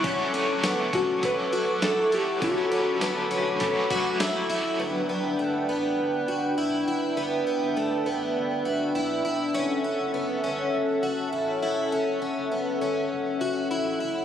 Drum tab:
HH |xxxxxxxx|xxxxxxxx|--------|--------|
TB |--x---x-|--x---x-|--------|--------|
SD |--o---o-|--o---o-|--------|--------|
BD |o--oo---|o---oo--|--------|--------|

HH |--------|--------|
TB |--------|--------|
SD |--------|--------|
BD |--------|--------|